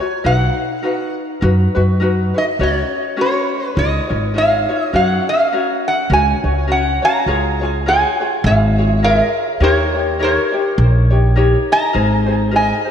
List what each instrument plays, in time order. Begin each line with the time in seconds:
Already playing: resonator guitar played with a steel bar G#5
0.00 ukulele F4 F#4 C#5
0.24 upright bass B1, ukulele D#4 F#4 A#4 B4, resonator guitar played with a steel bar F#5
0.83 ukulele D#4 F#4 A#4 B4
1.41 upright bass F#2, ukulele D#4 F#4 A#4 B4
1.75 upright bass F#2, ukulele D#4 F#4 B4
2.00 ukulele D#4 F#4 A#4 B4
2.34 ukulele D#4 F#4 B4, resonator guitar played with a steel bar D#5
2.59 upright bass C#2, ukulele C#4 F#4 A#4 C#5
2.63 resonator guitar played with a steel bar C#5
3.16 ukulele C#4 F#4 A#4 C#5
3.21 resonator guitar played with a steel bar C#5
3.66 resonator guitar played with a steel bar B4
3.75 upright bass C#2, ukulele D#4 F4 G#4 C#5, resonator guitar played with a steel bar D#5
4.09 upright bass G#1, ukulele D#4 F4 C#5
4.34 ukulele D#4 F4 G#4 C#5
4.38 resonator guitar played with a steel bar F5
4.69 ukulele D#4 F4 C#5
4.83 resonator guitar played with a steel bar D#5
4.93 upright bass F#2, ukulele C#4 F#4 A#4 C#5, resonator guitar played with a steel bar F#5
5.29 resonator guitar played with a steel bar F5
5.52 ukulele C#4 F#4 A#4 C#5
5.88 resonator guitar played with a steel bar F#5
6.10 upright bass C#2, ukulele C#4 F#4 A#4 C#5, resonator guitar played with a steel bar G#5
6.44 upright bass C#2, ukulele C#4 F#4 C#5
6.68 ukulele C#4 F#4 A#4 C#5
6.72 resonator guitar played with a steel bar F#5
7.02 ukulele C#4 F#4 C#5, resonator guitar played with a steel bar F5 A#5
7.26 upright bass C#2, ukulele F4 G#4 A#4 C#5
7.61 ukulele F4 G#4 C#5, resonator guitar played with a steel bar G#5
7.86 ukulele F4 G#4 A#4 C#5, resonator guitar played with a steel bar F5 G#5
8.20 ukulele F4 G#4 C#5
8.44 upright bass G#1, resonator guitar played with a steel bar C#5 F5
8.78 ukulele F4 G#4 C#5
9.03 ukulele F4 G#4 A#4 C#5, resonator guitar played with a steel bar A#4 D#5
9.60 upright bass D#2, ukulele D#4 G4 A#4 C#5, resonator guitar played with a steel bar A#4 C#5
9.95 ukulele D#4 G4 C#5
10.19 ukulele D#4 G4 A#4 C#5, resonator guitar played with a steel bar A#4
10.24 resonator guitar played with a steel bar C#5
10.52 ukulele D#4 G4 C#5
10.78 upright bass A#1
11.11 ukulele D#4 G4 C#5
11.36 ukulele D#4 G4 A#4 C#5
11.72 resonator guitar played with a steel bar D#5 A#5
11.93 upright bass G#1, ukulele D#4 G#4 A#4 C5
12.26 ukulele D#4 G#4 C5
12.51 ukulele D#4 G#4 A#4 C5
12.56 resonator guitar played with a steel bar D#5 G#5
12.85 ukulele D#4 G#4 C5